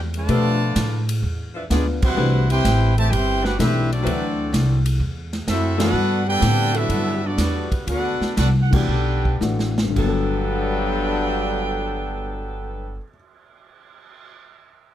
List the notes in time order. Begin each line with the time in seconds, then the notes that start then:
Already playing: E2
0.14 D3 F3 A3 F4 B4 D5 A5, ride
0.29 B2 F3 A3 B3 D4 G4 A4 B4, kick, ride
0.76 A2, kick, snare, hi-hat pedal, ride
1.09 ride
1.23 E2, kick
1.54 F3 D4 E4 B4
1.70 D2 G#3 B3 D4 F4 G#4 B4 D5, kick, snare, hi-hat pedal, ride
2.02 G3 C4 E4 F#4 B4 C5 F#5, kick, crash
2.15 C2 E3 G3 A3 C4 D4 G4 B4
2.50 C4 E4 G4 B4 C5 G5, ride
2.65 A1, kick, snare, hi-hat pedal, ride
2.97 C3 E3 A3 G4 C5 E5 A5, ride
3.11 G1 C4 E4 G4 B4 C5 G5, kick, ride
3.42 G3 C4 D4 F#4 G4 B4 F#5, snare
3.58 B1 E3 G3 A3 C4 D4 E4 G4 A4 B4 E5, kick, snare, hi-hat pedal, ride
3.91 F#3 A3 C4 D4 F#4 A4 D5, ride
4.03 D2 E3 F#3 A3 C4 D4 E4 F#4 B4, kick, ride
4.53 C2, kick, snare, hi-hat pedal, ride
4.86 ride
5.00 E2, kick
5.33 snare, ride
5.47 F#2 A3 C4 E4 F#4 A4 E5, kick, snare, hi-hat pedal, ride
5.78 E3 G3 A3 B3 D4 E4 F#4 A4 B4 F#5, snare, ride
5.93 G2
6.27 B3 D4 G4 A4 B4 G5
6.40 A2 D3 G3 C4 E4, kick, snare, hi-hat pedal, ride
6.74 F#3 A3 B3 D4 E4 F#4 A4 B4 E5, ride
6.89 G2, kick, ride
7.23 F#3 B3 D4 F#4 A4 D5
7.37 E2 G3 B3 F#4 B4, kick, snare, hi-hat pedal, ride
7.72 kick, ride
7.87 D2 B3 D4 F#4 A4 B4 F#5, kick, ride
8.20 muted upright bass stroke, snare
8.37 C2 B3 D4 F#4 A4 B4 F#5, kick, snare, hi-hat pedal, ride
8.62 F#5
8.71 E3 A3 B3 D4 F#4 G4 A4 B4 G5, kick, crash
8.88 B1 G3 B3 G4 A4
9.25 kick
9.41 A1 E3 A3 D4 F#4, snare, hi-hat pedal
9.59 snare
9.78 snare
9.84 G2
9.90 D3
9.95 G1 G2 D3 F#3 B3 D4 A4 B4 G5, kick, crash
10.02 B3
10.08 A4
10.35 cymbal swell